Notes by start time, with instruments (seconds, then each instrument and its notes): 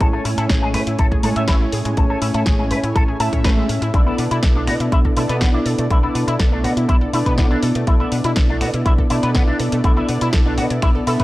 0.00 fingered electric bass A1, synth arpeggio sound G#3, analog polysynth A3 C#4 E4 C#5 G#5, clean electric guitar A4, kick, closed hi-hat
0.13 synth arpeggio sound A3, clean electric guitar A4
0.25 fingered electric bass A2, synth arpeggio sound C#4, clean electric guitar E4, open hi-hat
0.38 fingered electric bass A2, synth arpeggio sound E4, clean electric guitar A4, closed hi-hat
0.49 fingered electric bass A1, synth arpeggio sound G#4, kick, snare, closed hi-hat
0.62 synth arpeggio sound G#3, clean electric guitar G#4
0.74 fingered electric bass A2, synth arpeggio sound A3, clean electric guitar B4, finger snap, open hi-hat
0.87 fingered electric bass A2, synth arpeggio sound E4, closed hi-hat
0.99 fingered electric bass A1, synth arpeggio sound E4, clean electric guitar A4, kick, closed hi-hat
1.11 synth arpeggio sound G#4, kick
1.23 fingered electric bass A2, synth arpeggio sound G#3, analog polysynth A3 C#4 E4 C#5 G#5, clean electric guitar A4, open hi-hat
1.36 fingered electric bass A2, synth arpeggio sound A3, clean electric guitar E5, closed hi-hat
1.48 fingered electric bass A1, synth arpeggio sound C#4, clean electric guitar E4, kick, snare, closed hi-hat
1.61 synth arpeggio sound E4
1.72 fingered electric bass A2, synth arpeggio sound G#4, open hi-hat
1.85 fingered electric bass A2, synth arpeggio sound G#3, closed hi-hat
1.97 fingered electric bass A1, synth arpeggio sound G#3, analog polysynth A3 C#4 E4 C#5 G#5, clean electric guitar A4, kick, closed hi-hat
2.10 synth arpeggio sound A3, clean electric guitar A4
2.22 fingered electric bass A2, synth arpeggio sound C#4, clean electric guitar E4, open hi-hat
2.34 fingered electric bass A2, synth arpeggio sound E4, clean electric guitar A4, closed hi-hat
2.46 fingered electric bass A1, synth arpeggio sound G#4, kick, snare, closed hi-hat
2.59 synth arpeggio sound G#3, clean electric guitar G#4
2.71 fingered electric bass A2, synth arpeggio sound A3, clean electric guitar B4, open hi-hat
2.83 fingered electric bass A2, synth arpeggio sound E4, closed hi-hat
2.96 fingered electric bass A1, synth arpeggio sound E4, clean electric guitar A4, kick, closed hi-hat
3.08 synth arpeggio sound G#4
3.19 fingered electric bass A2, analog polysynth A3 C#4 E4 E5, synth arpeggio sound E4, clean electric guitar A5, open hi-hat
3.33 fingered electric bass A2, synth arpeggio sound C#4, clean electric guitar C#5, kick, closed hi-hat
3.44 fingered electric bass A1, synth arpeggio sound A3, clean electric guitar B4, kick, snare, closed hi-hat
3.57 synth arpeggio sound G#3
3.69 fingered electric bass A2, synth arpeggio sound C#4, open hi-hat
3.82 fingered electric bass A2, synth arpeggio sound E4, closed hi-hat
3.93 fingered electric bass B1, synth arpeggio sound A3, analog polysynth B3 D4 E4 A4 D5, clean electric guitar E4, kick, closed hi-hat
4.07 synth arpeggio sound B3, clean electric guitar E4
4.18 fingered electric bass B2, clean electric guitar B3, synth arpeggio sound D4, open hi-hat
4.31 fingered electric bass B2, synth arpeggio sound E4, clean electric guitar E4, closed hi-hat
4.43 fingered electric bass B1, synth arpeggio sound A4, kick, snare, closed hi-hat
4.56 synth arpeggio sound A3, clean electric guitar D4
4.67 fingered electric bass B2, synth arpeggio sound B3, clean electric guitar F#4, finger snap, open hi-hat
4.80 fingered electric bass B2, synth arpeggio sound E4, closed hi-hat
4.92 fingered electric bass B1, clean electric guitar E4, synth arpeggio sound E4, kick, closed hi-hat
5.05 synth arpeggio sound A4, kick
5.16 fingered electric bass B2, synth arpeggio sound A3, analog polysynth B3 D4 E4 A4 D5, clean electric guitar E4, open hi-hat
5.29 fingered electric bass B2, synth arpeggio sound B3, clean electric guitar B4, closed hi-hat
5.41 fingered electric bass B1, clean electric guitar B3, synth arpeggio sound D4, kick, snare, closed hi-hat
5.54 clean electric guitar D4, synth arpeggio sound E4
5.66 fingered electric bass B2, synth arpeggio sound A4, open hi-hat
5.79 fingered electric bass B2, synth arpeggio sound A3, closed hi-hat
5.89 fingered electric bass B1, synth arpeggio sound A3, analog polysynth B3 D4 E4 A4 D5, clean electric guitar E4, kick, closed hi-hat
6.03 synth arpeggio sound B3, clean electric guitar E4
6.15 fingered electric bass B2, clean electric guitar B3, synth arpeggio sound D4, open hi-hat
6.28 fingered electric bass B2, synth arpeggio sound E4, clean electric guitar E4, closed hi-hat
6.39 fingered electric bass B1, synth arpeggio sound A4, kick, snare, closed hi-hat
6.52 synth arpeggio sound A3, clean electric guitar D4
6.64 fingered electric bass B2, synth arpeggio sound B3, clean electric guitar F#4, open hi-hat
6.77 fingered electric bass B2, synth arpeggio sound E4, closed hi-hat
6.89 fingered electric bass B1, synth arpeggio sound E4, clean electric guitar E4, kick, closed hi-hat
7.01 synth arpeggio sound A4
7.13 fingered electric bass B2, synth arpeggio sound A3, analog polysynth B3 D4 E4 A4 D5, clean electric guitar E4, open hi-hat
7.26 fingered electric bass B2, synth arpeggio sound B3, clean electric guitar B4, kick, closed hi-hat
7.38 fingered electric bass B1, clean electric guitar B3, synth arpeggio sound D4, kick, snare, closed hi-hat
7.51 clean electric guitar D4, synth arpeggio sound E4
7.63 fingered electric bass B2, synth arpeggio sound A4, open hi-hat
7.75 fingered electric bass B2, synth arpeggio sound A3, closed hi-hat
7.86 fingered electric bass B1, synth arpeggio sound A3, analog polysynth B3 D4 E4 A4 D5, clean electric guitar E4, kick, closed hi-hat
8.00 synth arpeggio sound B3, clean electric guitar E4
8.12 fingered electric bass B2, clean electric guitar B3, synth arpeggio sound D4, open hi-hat
8.24 fingered electric bass B2, clean electric guitar E4, synth arpeggio sound E4, closed hi-hat
8.36 fingered electric bass B1, synth arpeggio sound A4, kick, snare, closed hi-hat
8.49 synth arpeggio sound A3, clean electric guitar D4
8.61 fingered electric bass B2, synth arpeggio sound B3, clean electric guitar F#4, finger snap, open hi-hat
8.74 fingered electric bass B2, synth arpeggio sound E4, closed hi-hat
8.85 fingered electric bass B1, clean electric guitar E4, synth arpeggio sound E4, kick, closed hi-hat
8.98 synth arpeggio sound A4, kick
9.09 fingered electric bass B2, synth arpeggio sound A3, analog polysynth B3 D4 E4 A4 D5, clean electric guitar E4, open hi-hat
9.23 fingered electric bass B2, synth arpeggio sound B3, clean electric guitar B4, closed hi-hat
9.35 fingered electric bass B1, clean electric guitar B3, synth arpeggio sound D4, kick, snare, closed hi-hat
9.47 clean electric guitar D4, synth arpeggio sound E4
9.60 fingered electric bass B2, synth arpeggio sound A4, open hi-hat
9.72 fingered electric bass B2, synth arpeggio sound A3, closed hi-hat
9.83 fingered electric bass B1, synth arpeggio sound A3, analog polysynth B3 D4 E4 A4 D5, clean electric guitar E4, kick, closed hi-hat
9.97 synth arpeggio sound B3, clean electric guitar E4
10.09 fingered electric bass B2, clean electric guitar B3, synth arpeggio sound D4, open hi-hat
10.21 fingered electric bass B2, synth arpeggio sound E4, clean electric guitar E4, closed hi-hat
10.33 fingered electric bass B1, synth arpeggio sound A4, kick, snare, closed hi-hat
10.46 synth arpeggio sound A3, clean electric guitar D4
10.58 fingered electric bass B2, synth arpeggio sound B3, clean electric guitar F#4, open hi-hat
10.70 fingered electric bass B2, synth arpeggio sound E4, closed hi-hat
10.82 fingered electric bass B1, synth arpeggio sound E4, clean electric guitar E4, finger snap, kick, closed hi-hat
10.95 synth arpeggio sound A4
11.06 fingered electric bass B2, analog polysynth B3 D4 E4 A4 E5, clean electric guitar E4, synth arpeggio sound A4, open hi-hat
11.20 fingered electric bass B2, synth arpeggio sound A3, clean electric guitar B4, kick, closed hi-hat